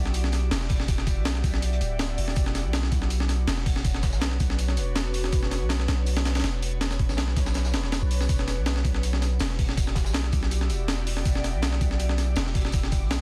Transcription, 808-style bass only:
0.00 0.50 B1 loud
0.51 1.18 E1 medium
1.17 1.43 B1 loud
1.44 1.80 B1 loud
1.81 2.17 D1 loud
2.18 2.29 E1 medium
2.28 2.36 D1 medium
2.36 2.66 E1 loud
2.65 2.91 B1 loud
2.92 3.46 B1 loud
3.48 4.14 E1 medium
4.13 4.39 B1 loud
4.40 4.79 B1 loud
4.77 5.31 E1 medium
5.33 5.62 E1 loud
5.61 5.87 B1 loud
5.88 6.42 B1 loud
6.44 7.11 E1 medium
7.09 7.35 B1 loud
7.37 7.75 B1 loud
7.74 8.02 E1 medium
8.02 8.28 B1 medium
8.29 8.59 E1 loud
8.58 8.83 B1 loud
8.85 9.39 B1 loud
9.40 10.07 E1 medium
10.06 10.32 B1 loud
10.33 10.72 B1 loud
10.70 11.24 E1 medium
11.25 11.55 E1 loud
11.54 11.80 B1 loud
11.81 12.35 B1 loud
12.37 13.03 E1 medium
13.02 13.21 B1 loud

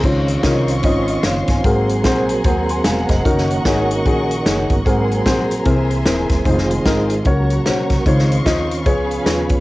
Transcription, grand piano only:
0.04 0.65 C#3 medium
0.04 0.30 C#4 medium
0.04 0.31 D#4 medium
0.04 0.31 F4 medium
0.04 0.31 C5 medium
0.44 0.71 C#4 medium
0.44 0.71 D#4 medium
0.44 0.71 F4 medium
0.44 0.71 A#4 medium
0.84 1.11 C#4 medium
0.84 1.11 D#4 medium
0.84 1.11 F4 medium
0.84 1.08 D#5 medium
1.10 1.24 C5 soft
1.10 1.24 D#5 medium
1.25 1.48 C#5 medium
1.25 1.48 F5 medium
1.49 1.87 F5 soft
1.49 1.87 G#5 medium
1.65 2.25 G#2 medium
1.65 1.91 C4 medium
1.65 1.91 F#4 medium
1.65 1.91 G#4 medium
1.65 1.91 A#4 medium
2.05 2.31 C4 medium
2.05 2.32 F#4 medium
2.05 2.31 G#4 medium
2.05 2.32 C5 medium
2.45 2.71 C4 medium
2.45 2.72 F#4 medium
2.45 2.72 G#4 medium
2.45 2.69 C5 medium
2.70 2.84 G#5 medium
2.70 2.85 C6 medium
2.85 3.09 F5 medium
2.85 3.08 G#5 medium
3.10 3.48 C5 soft
3.10 3.47 D#5 medium
3.25 3.52 C#4 medium
3.25 3.52 D#4 medium
3.25 3.52 F#4 medium
3.25 3.52 A#4 medium
3.66 3.92 C#4 medium
3.66 3.92 D#4 medium
3.66 3.92 F#4 medium
3.66 3.92 G#4 medium
4.06 4.32 C#4 medium
4.06 4.32 D#4 medium
4.06 4.32 F#4 medium
4.06 4.32 G#4 medium
4.46 4.72 C#4 medium
4.46 4.73 D#4 medium
4.46 4.72 F#4 medium
4.46 4.73 G#4 medium
4.86 5.46 G#2 medium
4.86 5.12 C4 medium
4.86 5.12 F#4 medium
4.86 5.12 G#4 medium
4.86 5.12 A#4 medium
5.26 5.52 C4 medium
5.26 5.52 F#4 medium
5.26 5.52 G#4 medium
5.26 5.52 C5 medium
5.65 6.26 C3 medium
5.65 5.92 C4 medium
5.65 5.92 E4 medium
5.65 5.92 G#4 medium
5.65 5.92 A#4 medium
6.05 6.32 C4 medium
6.05 6.32 E4 medium
6.05 6.32 G#4 medium
6.05 6.32 A#4 medium
6.45 6.72 D#4 medium
6.45 6.72 F4 medium
6.45 6.72 G#4 medium
6.45 6.72 C5 medium
6.85 7.12 D#4 medium
6.85 7.12 F4 medium
6.85 7.12 G#4 medium
6.85 7.13 A#4 medium
7.26 7.86 C#3 medium
7.26 7.52 C#4 medium
7.26 7.53 F#4 medium
7.26 7.53 A#4 medium
7.26 7.53 C#5 medium
7.66 7.93 C#4 medium
7.66 7.93 F#4 medium
7.66 7.93 A#4 medium
7.66 7.93 C5 medium
8.07 8.67 C#3 medium
8.07 8.33 D#4 medium
8.07 8.33 F4 medium
8.07 8.33 C5 medium
8.07 8.33 C#5 medium
8.46 8.72 D#4 medium
8.46 8.73 F4 medium
8.46 8.73 C5 medium
8.46 8.73 D#5 medium
8.86 9.46 C#3 medium
8.86 9.12 F4 medium
8.86 9.12 G#4 medium
8.86 9.13 B4 medium
8.86 9.13 C#5 medium
9.25 9.52 F4 medium
9.25 9.52 G#4 medium
9.25 9.52 B4 medium
9.25 9.52 C#5 medium

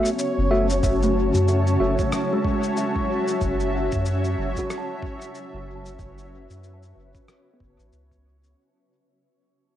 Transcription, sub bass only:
0.38 0.81 F#1 medium
0.83 1.31 F#1 loud
1.34 1.77 F#2 loud
1.80 1.96 F#1 medium
3.41 3.89 F#1 loud
3.93 4.35 F#2 loud
4.38 4.54 F#1 medium
5.54 5.97 F#1 medium
5.99 6.47 F#1 medium
6.50 6.93 F#2 medium
6.96 7.12 F#1 medium
7.60 7.77 F#1 medium
7.79 7.91 A1 medium
7.92 8.54 C#2 medium

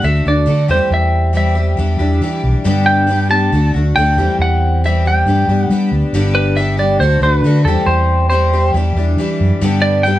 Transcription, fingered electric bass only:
0.03 0.24 D2 loud
0.25 0.45 D2 loud
0.47 0.67 D3 medium
0.69 0.79 E2 medium
0.90 1.74 E2 loud
1.78 1.98 E2 loud
2.00 2.20 E2 medium
2.21 2.42 E3 medium
2.43 2.54 B1 medium
2.65 3.48 G2 loud
3.52 3.72 D2 loud
3.75 3.95 D2 medium
3.96 4.16 D2 medium
4.17 4.27 E2 medium
4.39 5.22 E2 loud
5.26 5.47 G2 loud
5.48 5.68 G2 medium
5.69 5.90 G3 medium
5.91 6.02 D2 medium
6.13 6.96 G1 loud
6.99 7.20 D2 loud
7.21 7.41 D2 medium
7.42 7.63 D3 medium
7.65 7.76 E2 medium
7.86 8.70 E2 loud
8.74 8.95 E2 loud
8.95 9.16 E2 loud
9.17 9.38 E3 medium
9.40 9.50 F#2 medium
9.61 10.19 G2 loud

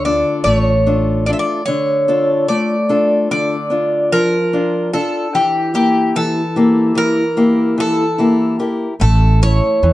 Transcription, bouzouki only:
0.05 0.43 D5 medium
0.44 1.23 C#5 medium
1.26 1.32 D5 medium
1.33 1.39 E5 medium
1.39 1.65 D5 medium
1.66 2.44 C#5 medium
2.48 3.27 D5 medium
3.31 4.12 D5 medium
4.12 4.90 A#4 medium
4.93 5.36 A4 medium
5.35 5.74 G4 medium
5.75 6.17 G4 medium
6.16 6.94 A4 medium
6.98 7.75 A#4 medium
7.80 8.68 A4 medium
9.01 9.39 A4 medium
9.43 9.93 C#5 medium

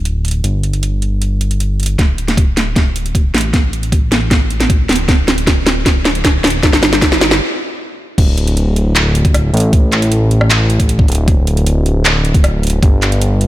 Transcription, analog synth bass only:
0.00 0.42 D1 medium
0.44 1.97 G1 medium
1.99 3.32 D1 medium
3.34 4.87 A1 medium
4.89 6.61 D1 medium
6.63 7.41 G1 loud
8.18 9.52 D1 medium
9.54 11.07 A1 medium
11.09 12.81 D1 medium
12.83 13.47 G1 medium

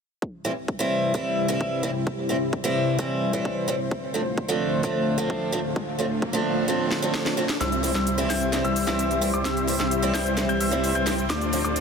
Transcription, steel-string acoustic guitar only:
0.45 0.51 E3 medium
0.45 0.51 G3 medium
0.45 0.51 C4 medium
0.45 0.51 E4 medium
0.79 1.11 E3 medium
0.79 1.12 G3 medium
0.79 1.12 C4 medium
0.79 1.12 E4 loud
1.14 1.46 E3 medium
1.14 1.46 G3 medium
1.14 1.46 C4 medium
1.14 1.47 E4 medium
1.48 1.81 E3 medium
1.48 1.81 G3 medium
1.48 1.81 C4 medium
1.48 1.81 E4 loud
1.83 1.89 E3 medium
1.83 1.89 G3 medium
1.83 1.90 C4 medium
1.83 1.90 E4 loud
2.29 2.35 E3 medium
2.29 2.36 G3 medium
2.29 2.36 C4 medium
2.29 2.36 E4 medium
2.64 2.96 E3 loud
2.64 2.96 G3 medium
2.64 2.96 C4 medium
2.64 2.97 E4 loud
2.99 3.31 E3 medium
2.99 3.31 G3 medium
2.99 3.31 C4 medium
2.99 3.31 E4 loud
3.33 3.65 E3 loud
3.33 3.66 G3 medium
3.33 3.66 C4 medium
3.33 3.66 E4 loud
3.68 3.74 E3 loud
3.68 3.74 G3 medium
3.68 3.74 C4 medium
3.68 3.75 E4 loud
4.14 4.20 F3 medium
4.14 4.20 A3 medium
4.14 4.20 C4 medium
4.14 4.21 D4 medium
4.48 4.81 F3 medium
4.48 4.81 A3 medium
4.48 4.81 C4 medium
4.48 4.81 D4 loud
4.83 5.15 F3 medium
4.83 5.16 A3 medium
4.83 5.16 C4 medium
4.83 5.16 D4 medium
5.18 5.50 F3 loud
5.18 5.50 A3 medium
5.18 5.50 C4 medium
5.18 5.51 D4 loud
5.52 5.59 F3 loud
5.52 5.59 A3 medium
5.52 5.59 C4 medium
5.52 5.59 D4 loud
5.99 6.05 F3 medium
5.99 6.05 A3 medium
5.99 6.05 C4 medium
5.99 6.05 D4 medium
6.33 6.65 F3 loud
6.33 6.66 A3 medium
6.33 6.66 C4 medium
6.33 6.66 D4 loud
6.68 7.00 F3 medium
6.68 7.00 A3 medium
6.68 7.00 C4 medium
6.68 7.01 D4 medium
7.02 7.35 F3 loud
7.02 7.35 A3 medium
7.02 7.35 C4 medium
7.02 7.35 D4 loud
7.37 7.43 F3 medium
7.37 7.43 A3 medium
7.37 7.44 C4 medium
7.37 7.44 D4 medium
7.83 7.89 E3 medium
7.83 7.89 G3 medium
7.83 7.90 C4 medium
7.83 7.90 E4 medium
8.18 8.50 E3 loud
8.18 8.50 G3 medium
8.18 8.50 C4 medium
8.18 8.50 E4 loud
8.52 8.85 E3 medium
8.52 8.85 G3 medium
8.52 8.85 C4 medium
8.52 8.85 E4 loud
8.87 9.19 E3 loud
8.87 9.19 G3 medium
8.87 9.20 C4 medium
8.87 9.20 E4 loud
9.21 9.28 E3 medium
9.21 9.28 G3 medium
9.21 9.28 C4 medium
9.21 9.28 E4 loud
9.67 9.74 E3 medium
9.67 9.74 G3 medium
9.67 9.74 C4 medium
9.67 9.74 E4 medium
10.02 10.35 E3 loud
10.02 10.35 G3 medium
10.02 10.35 C4 medium
10.02 10.35 E4 loud
10.37 10.69 E3 medium
10.37 10.69 G3 medium
10.37 10.70 C4 medium
10.37 10.70 E4 medium
10.71 11.04 E3 loud
10.71 11.04 G3 medium
10.71 11.04 C4 medium
10.71 11.04 E4 loud
11.06 11.12 E3 loud
11.06 11.13 G3 medium
11.06 11.13 C4 medium
11.06 11.13 E4 loud
11.52 11.59 F3 medium
11.52 11.59 A3 medium
11.52 11.59 C4 medium
11.52 11.59 D4 medium

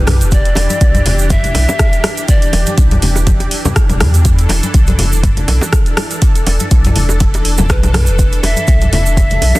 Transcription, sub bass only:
0.00 0.22 B1 loud
0.21 0.54 E1 loud
0.56 0.68 E1 loud
0.81 1.02 B1 loud
1.05 1.52 E1 loud
1.55 1.66 B1 medium
2.53 2.65 E1 loud
2.78 2.99 B1 loud
3.02 3.49 E1 loud
3.89 4.02 D1 medium
4.00 4.47 E2 loud
4.49 4.61 E1 loud
4.74 4.95 B1 loud
4.99 5.45 E1 loud
5.48 5.59 B1 medium
6.47 6.58 E1 loud
6.71 6.92 B1 loud
6.96 7.42 E1 loud
7.45 7.71 E1 medium
7.70 8.09 B1 loud
8.08 8.40 E1 loud
8.43 8.55 E1 loud
8.68 8.89 B1 medium
8.92 9.39 E1 loud
9.42 9.53 B1 medium

